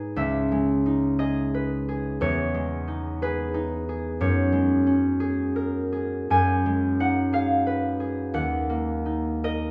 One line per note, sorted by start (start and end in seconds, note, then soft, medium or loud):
0.00 0.20 G#2 soft
0.00 0.50 G#3 soft
0.00 0.85 D#4 soft
0.00 1.18 G#4 soft
0.00 1.53 B4 medium
0.00 0.88 D#5 medium
0.16 2.25 C#2 soft
0.16 4.07 E5 medium
0.52 2.53 G#3 soft
0.86 2.87 D#4 soft
1.19 1.87 G#4 soft
1.19 4.23 D#5 medium
1.54 3.21 B4 soft
1.89 3.21 G#4 soft
2.21 4.23 E2 medium
2.21 3.91 C#5 medium
2.54 4.51 G#3 soft
2.88 3.53 D#4 soft
3.22 3.88 G#4 soft
3.22 4.23 B4 medium
3.54 4.23 D#4 soft
3.89 5.19 G#4 soft
4.21 6.29 F#2 medium
4.21 6.34 C#5 medium
4.52 6.65 G#3 soft
4.87 6.34 C#4 soft
5.20 5.91 G#4 soft
5.56 6.34 A#4 soft
5.92 7.32 G#4 soft
6.30 8.37 F#2 soft
6.30 8.37 G#5 medium
6.66 8.37 G#3 soft
7.00 9.04 D#4 soft
7.00 7.57 F#5 medium
7.33 7.99 G#4 soft
7.33 8.37 F5 medium
7.67 8.37 B4 soft
8.00 8.37 G#4 soft
8.34 9.71 D#2 soft
8.34 9.71 F#5 medium
8.70 9.71 A#3 soft
9.06 9.71 D#4 soft
9.44 9.71 A#4 soft
9.44 9.71 D#5 medium